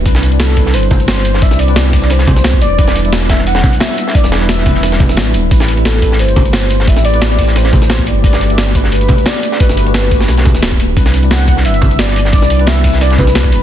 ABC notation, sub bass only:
X:1
M:4/4
L:1/16
Q:"Swing 16ths" 1/4=176
K:Clyd
V:1 name="Sub bass" clef=bass
C,,8 G,,,8- | G,,, C,,8- C,, C,,4 E,,,2- | E,,, E,,,8- E,,, z6 | z E,,,8- E,,,3 A,,,2 D,,,2 |
A,,,8 G,,,8- | G,,, A,,,8- A,,, A,,,4 G,,,2- | G,,, G,,,8- G,,, z6 | z G,,,6- G,,, B,,,3 D,,,3 D,,,2 |
C,,8 G,,,8- | G,,, C,,8- C,, C,,4 E,,,2 |]